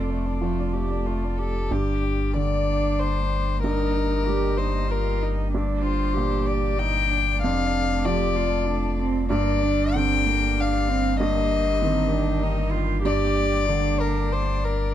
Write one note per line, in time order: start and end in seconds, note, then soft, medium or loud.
0.00 1.70 F1 medium
0.00 1.65 F2 soft
0.00 1.70 A3 soft
0.00 0.11 D4 soft
0.00 0.33 F4 soft
0.00 1.01 A4 soft
0.00 1.70 A4 soft
0.00 1.69 D5 soft
0.10 0.28 A3 soft
0.26 0.44 D4 soft
0.40 1.70 F3 soft
0.40 0.62 A3 soft
0.40 0.74 F4 soft
0.60 0.76 D4 soft
0.73 0.92 A3 soft
0.73 1.08 G4 soft
0.91 1.08 D4 soft
1.06 1.26 A3 soft
1.06 1.40 F4 soft
1.25 1.38 D4 soft
1.39 1.70 G4 soft
1.39 1.73 A4 medium
1.69 7.45 G1 medium
1.69 3.60 G2 medium
1.69 7.39 A#3 medium
1.69 7.39 G4 medium
1.69 2.36 G4 medium
1.69 3.59 D5 medium
2.36 3.63 D3 soft
2.36 3.60 D4 medium
2.36 3.01 D5 medium
2.99 3.63 C5 medium
3.63 5.49 G2 medium
3.63 4.28 D#4 medium
3.63 4.59 A#4 medium
3.63 5.53 D#5 medium
4.27 5.54 G3 soft
4.27 4.60 G4 medium
4.57 4.90 D#4 medium
4.57 4.92 C5 medium
4.88 5.24 F4 medium
4.88 5.22 A#4 medium
5.23 5.53 D#4 medium
5.52 7.40 G2 medium
5.52 5.84 D4 medium
5.52 11.20 D5 medium
5.82 6.16 F4 medium
5.82 6.48 C5 medium
6.14 7.43 A#2 soft
6.14 6.80 G4 medium
6.46 6.80 D5 medium
6.79 7.11 D#4 medium
6.79 7.41 G5 loud
7.10 8.07 D4 medium
7.42 9.33 F1 medium
7.42 9.27 F2 medium
7.42 9.31 A3 medium
7.42 9.31 A4 medium
7.42 8.06 F5 loud
8.05 9.30 F3 medium
8.05 8.37 G4 medium
8.05 8.99 D5 loud
8.36 8.67 F4 medium
8.66 9.01 D4 medium
8.99 9.29 C4 medium
9.30 14.94 G1 medium
9.30 11.16 G2 medium
9.30 9.64 A#3 medium
9.30 14.94 A#3 medium
9.30 14.94 G4 medium
9.30 9.97 D5 loud
9.63 9.96 D4 medium
9.94 11.21 D3 medium
9.94 10.28 C4 medium
9.94 10.61 G5 loud
10.26 10.60 A#3 medium
10.59 10.90 D4 medium
10.59 11.19 F5 loud
10.88 11.19 C4 medium
11.18 13.02 G2 medium
11.18 11.82 A#3 medium
11.18 13.05 A#4 medium
11.18 12.72 D#5 loud
11.81 13.06 D#3 medium
11.81 12.11 C4 medium
12.09 12.45 D4 medium
12.43 12.73 D#4 medium
12.72 13.02 F4 medium
13.03 14.92 G2 medium
13.03 13.69 G4 medium
13.03 14.02 D5 loud
13.03 14.94 D5 medium
13.67 14.94 D3 medium
13.67 14.94 D4 medium
14.00 14.34 A#4 medium
14.33 14.66 C5 medium
14.64 14.94 A#4 medium